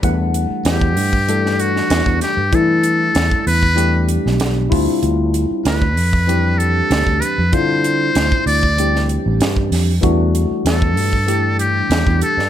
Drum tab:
HH |x-x-x-o-x-x-x-x-|x-x-x-o-x-x-x-o-|x-x-x-o-x-x-x-x-|x-x-x-o-x-x-x-o-|
SD |----o----o-oo-o-|----o------oo---|----o-------o---|----o----o--o-o-|
BD |o----o-o-----o--|o----o-o------o-|-----o-o-----o--|o----o-o-----o--|

HH |x-x-x-o-x-x-x-x-|
SD |----o-------o--o|
BD |o----o-o-----o--|